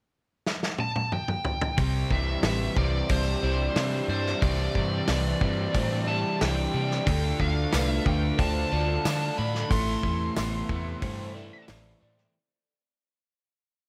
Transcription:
0.46 snare
0.63 snare
0.79 A5, high tom
0.96 high tom
1.12 G5, mid tom
1.28 mid tom
1.45 floor tom
1.61 floor tom
1.76 C2 C3 G3 C4 G4 D5 E5 G5, kick, open hi-hat
1.80 C4
2.11 C2 E3 E5, kick
2.43 A1 E3 G3 B4, snare, open hi-hat
2.75 C2 C3 E3 G3 C4 D5, kick
3.09 C2 G3 D4 C5, kick, open hi-hat
3.43 C2 G3 E4 D5
3.76 C3 E3 D4, snare, open hi-hat
4.08 G2 G3 D4 C5 D5
4.27 snare
4.41 C2 C3 G3 C4 G4 D5, kick, open hi-hat
4.75 G2 E3, kick
5.07 C2 E3 G3 B4, snare, open hi-hat
5.41 G2 C3 E3 G3 C4, kick
5.73 A2 G3 D4 C5, kick, open hi-hat
6.06 G3 E4 D5 A5
6.40 C2 E3 D4 G5, snare, open hi-hat
6.73 C3 G3 D4 D5
6.91 snare
7.06 D2 D3 A3 D4 F4 A4 F5 G5, kick, open hi-hat
7.39 D2 D3 A3 F5, kick
7.72 C2 D3 A3 B4, snare, open hi-hat, tambourine
7.89 E5
8.04 D2 D3 A3 D4 G5, kick
8.38 D2 A3 D4 C5 A5, kick, open hi-hat
8.72 D2 A3 F4 D5
9.05 D3 D4, snare, open hi-hat, tambourine
9.37 A2 A3 D4 D5 B5
9.55 snare
9.69 A1 A2 C3 E3 A3 E4 A4 E5 C6, kick, open hi-hat
10.03 E2 E3, kick
10.36 A1 E3 A3 B3, snare, open hi-hat, tambourine
10.69 E2 A2 E3 A3, kick
11.02 G2 A3 C4 C5, kick, open hi-hat
11.35 A3 E4 D5
11.68 A1 E3 C4, snare, open hi-hat, tambourine
12.00 A2 A3 C4 D5
12.18 snare

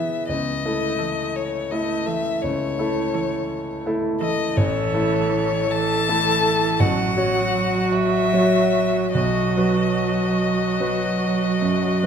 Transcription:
Already playing: B2 E3 B3 E4 G#4 E5
0.28 C#2 D#5
0.65 A3 E4 A4
0.99 E3 A4
1.36 C#5
1.71 A3 E4 A4 D#5
2.06 E3 A4 E5
2.42 C#2 C#5
2.79 A3 E4 A4
3.14 E3 A4
3.86 A3 E4 A4
4.21 E3 A4 D#5
4.57 A1 E3 A4 C#5
4.94 A3 E4 A4
5.72 E3 A4 A5
6.08 A3 E4 A4
6.80 A1 F#3 F#4 F#5
7.17 F#3 F#4 C#5
7.92 E5
8.33 F#3 F#4 C#5
9.13 B1 F#3 F#4 D#5
9.57 F#3 F#4 B4
10.80 F#3 F#4 B4
11.61 F#2
12.02 F#3 F#4 B4

